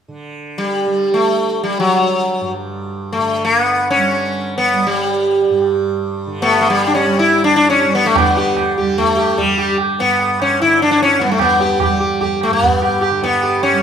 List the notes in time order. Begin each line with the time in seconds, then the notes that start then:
0.08 D3
0.58 G3
0.86 G3
1.14 A3
1.63 G3
1.80 F#3
2.41 G2
3.13 A3
3.18 D3
3.45 A#3
3.62 B3
3.90 C#4
3.96 G3
4.58 B3
4.73 G3
4.87 G3
5.50 G2
6.27 D3
6.42 A3 B3
6.61 A3
6.70 G3
6.87 D4
6.95 C#4
7.06 G3
7.19 E4
7.44 D4
7.56 D4
7.70 C#4
7.85 G3
7.95 B3
8.06 A3
8.16 D3 B3, tabla na, tabla ge
8.37 G4, tabla te
8.57 tabla na, tabla ge
8.78 G3 G4, tabla ge
8.98 A3, tabla tin, tabla ge
9.17 G4, tabla na
9.38 G3, tabla tin, tabla ge
9.58 G4, tabla na
9.78 tabla na
9.99 G2 B3, tabla te
10.19 tabla tin
10.40 C#4, tabla na
10.59 D3 E4, tabla te
10.79 D4, tabla te
10.91 D4
10.98 tabla te
11.02 C#4
11.08 tabla te
11.19 B3, tabla ke
11.24 G3
11.30 A3, tabla te
11.39 B3, tabla na, tabla ge
11.60 G4, tabla te
11.80 G4, tabla na, tabla ge
11.86 G3
12.00 G4, tabla ge
12.21 G4, tabla tin, tabla ge
12.41 A3, tabla na
12.49 G2
12.53 B3
12.62 tabla tin, tabla ge
12.82 G4, tabla na
13.01 G4, tabla na
13.11 D3
13.23 B3, tabla te
13.42 G4, tabla tin
13.62 C#4, tabla na
13.73 G3